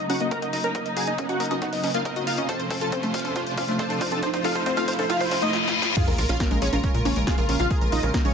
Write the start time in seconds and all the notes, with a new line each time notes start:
Already playing: C#3 F#3 A#3 D#4, riser
0.10 C#4 F#4 F#5, open hi-hat, high conga
0.20 A#3 D#5, closed hi-hat
0.31 A#4 A#5, kick, closed hi-hat
0.42 F#4 D#5, closed hi-hat
0.53 D#4 D#5, open hi-hat
0.64 C#4 A#4 A#5, closed hi-hat
0.75 A#4 D#5, kick, closed hi-hat
0.86 D#5, closed hi-hat
0.97 F#4 G#4 G#5, open hi-hat
1.07 D#4 D#5, closed hi-hat
1.18 C#4 D#5, kick, closed hi-hat
1.29 A#3 F#4 F#5, closed hi-hat, high conga
1.40 A#4 D#5, open hi-hat
1.46 closed hi-hat
1.51 F#4 D#5, closed hi-hat, high conga
1.62 D#4 F#4 F#5, kick, closed hi-hat
1.73 D#5, open hi-hat
1.84 C#4 D#5, open hi-hat, high conga
1.94 A#3 F4 F5, closed hi-hat
2.05 A#4 D#5, kick, closed hi-hat
2.16 F#4 D#5, closed hi-hat
2.27 D#4 F4 F5, open hi-hat
2.38 C#4 D#5, closed hi-hat
2.49 C3 F3 A3 F4 A4 C5 A5, kick, closed hi-hat
2.60 C5, closed hi-hat
2.70 A4 C5, kick, open hi-hat
2.81 F4 A4 A5, closed hi-hat
2.92 C4 C5, kick, closed hi-hat
3.03 A3 C5, closed hi-hat, high conga
3.14 F4 C5 F5, kick, open hi-hat
3.19 closed hi-hat
3.25 A4 C5, closed hi-hat, high conga
3.36 F4 C5, kick, closed hi-hat
3.47 C5, closed hi-hat
3.57 C4 F4 F5, kick, open hi-hat, high conga
3.68 A3 C5, closed hi-hat
3.79 A4 C5 A5, kick, closed hi-hat
3.90 A4 C5, closed hi-hat
4.01 F4 C5, kick, open hi-hat
4.12 C4 A4 A5, closed hi-hat
4.23 C5, kick, closed hi-hat
4.34 C5, kick, closed hi-hat
4.44 F4 A4 F5, kick, open hi-hat
4.55 F4 C5, kick, closed hi-hat
4.66 C4 C5, kick, closed hi-hat
4.77 A3 F4 F5, kick, closed hi-hat, high conga
4.88 C5, kick, open hi-hat
4.93 closed hi-hat
4.99 A4 C5, kick, closed hi-hat, high conga
5.10 F4 F5, kick, closed hi-hat, reverse cymbal
5.21 C5, kick, open hi-hat
5.31 C4 C5, kick, open hi-hat, high conga
5.42 A3 D#4 D#5, kick, closed hi-hat
5.53 snare
5.68 snare
5.82 snare
5.97 C#3 G#3 A#3 F4 G#4 F5, kick, closed hi-hat, crash, sub drop
6.07 A#1 A#4, closed hi-hat
6.18 A#1 F4 A#4, open hi-hat
6.29 A#1 C#4 F4 F5, closed hi-hat
6.40 A#3 A#4, kick, snare, closed hi-hat
6.51 A#1 G#3 A#4, closed hi-hat, high conga
6.62 A#1 C#4 G#4 C#5, open hi-hat
6.67 closed hi-hat
6.73 A#1 F4 A#4, closed hi-hat, high conga
6.84 C#4 A#4, kick, closed hi-hat
6.94 A#2 A#4, closed hi-hat
7.05 A#1 A#3 C#4 C#5, open hi-hat, high conga
7.16 A#1 G#3 A#4, closed hi-hat
7.27 F4 G#4 F5, kick, snare, closed hi-hat
7.38 A#1 F4 A#4, closed hi-hat
7.49 A#1 C#4 A#4, open hi-hat
7.60 A#1 A#3 F4 F5
7.70 G#4 A#4, kick, closed hi-hat
7.81 A#1 A#4, closed hi-hat
7.92 A#1 D#4 F4 D#5, open hi-hat
8.03 A#1 C#4 A#4, closed hi-hat
8.14 A#3 A#4, kick, snare, closed hi-hat
8.25 A#1 G#3 C#4 C#5, closed hi-hat, high conga